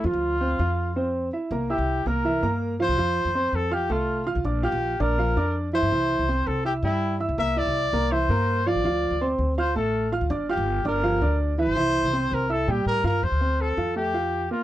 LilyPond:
<<
  \new Staff \with { instrumentName = "Grand piano" } { \time 4/4 \key f \major \tempo 4 = 164 <f f'>4 <c' c''>8 <f' f''>4 <c' c''>4 <e' e''>8 | <bes bes' bes''>8 <e' e'' e'''>4 <bes bes' bes''>8 <e e' e''>8 <bes bes' bes''>4 <f f' f''>8 | <f f' f''>4 <c' c'' c'''>4 <f' f'' f'''>8 <a a' a''>4 <f' f'' f'''>8 | <d' d'' d'''>8 <f' f'' f'''>4 <d' d'' d'''>8 <f f' f''>8 <d' d'' d'''>4 <e e' e''>8 |
<e e' e''>4 <c' c'' c'''>4 <e' e'' e'''>8 <g g' g''>4 <e' e'' e'''>8 | <bes bes' bes''>8 <e' e'' e'''>4 <bes bes' bes''>8 <e e' e''>8 <bes bes' bes''>4 <f f' f''>8 | <f f' f''>4 <c' c'' c'''>4 <f' f'' f'''>8 <a a' a''>4 <f' f'' f'''>8 | <d' d'' d'''>8 <f' f'' f'''>4 <d' d'' d'''>8 <f f' f''>8 <d' d'' d'''>4 <e e' e''>8 |
<e e' e''>4 <c' c'' c'''>4 <e' e'' e'''>8 <g g' g''>4 <f' f'' f'''>8 | r8 <c' c''>4 <f' f''>8 <a a'>8 <f' f''>4 <bes bes'>8 | }
  \new Staff \with { instrumentName = "Trumpet" } { \time 4/4 \key f \major f'2. r4 | r8 g'4 bes'4. r8 c''8~ | c''4. a'8 g'8 f'4 r8 | r8 g'4 bes'4. r8 c''8~ |
c''4. a'8 g'8 e'4 r8 | e''8 d''4. c''4. d''8~ | d''4~ d''16 r8. c''8 a'4 r8 | r8 g'4 bes'4. r8 c''8~ |
c''4. bes'8 a'8 g'8 bes'8 bes'8 | c''4 a'4 g'4. f'8 | }
  \new Staff \with { instrumentName = "Upright bass" } { \clef bass \time 4/4 \key f \major f,16 d,4~ d,16 f,2 r8 | c,8. c,8. c,4 g,4~ g,16 c,16 | f,8. f,8. f,4 c,4~ c,16 c,16 | bes,,8. bes,,8. bes,,4 f,4~ f,16 g,16 |
c,8. c,8. c,4 g,4~ g,16 c,16 | c,8. c,8. c,4 g,4~ g,16 a,,16 | d,8. d,8. d,4 a,,4~ a,,16 d,16 | g,,8. g,,8. g,,4 d,4~ d,16 g,,16 |
c,8. c,8. c,4 bes,8 a,8 g,8 | f,16 d,4~ d,16 f,2 r8 | }
>>